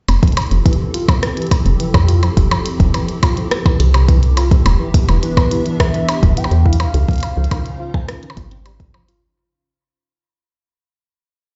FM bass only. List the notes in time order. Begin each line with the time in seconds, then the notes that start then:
0.08 F1
0.51 F1
1.66 F1
1.94 F2
2.37 F1
2.80 F1
3.80 C2
4.66 E1
5.08 E1
6.23 E1
6.51 E2
6.94 C#2
7.37 C#2
8.37 G#1